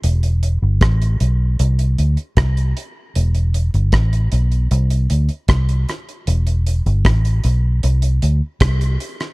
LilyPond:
<<
  \new Staff \with { instrumentName = "Fingered electric bass" } { \clef bass \time 4/4 \key e \minor \tempo 4 = 77 e,,8. g,,16 a,,8 b,,8 c,8 d,16 r16 c,8 r8 | e,,8. g,,16 a,,8 b,,8 c,8 d,16 r16 c,8 r8 | e,,8. g,,16 a,,8 b,,8 c,8 d,16 r16 c,8 r8 | }
  \new DrumStaff \with { instrumentName = "Drums" } \drummode { \time 4/4 hh16 hh16 hh8 <hh bd ss>16 hh16 hh8 hh16 hh16 hh16 hh16 <hh bd ss>16 hh16 hh8 | hh16 hh16 hh16 hh16 <hh bd ss>16 hh16 hh16 hh16 hh16 hh16 hh16 hh16 <hh bd ss>16 hh16 <hh ss>16 hh16 | hh16 hh16 hh16 hh16 <hh bd ss>16 hh16 hh8 hh16 hh16 hh8 <hh bd ss>16 hh16 hh16 <hh ss>16 | }
>>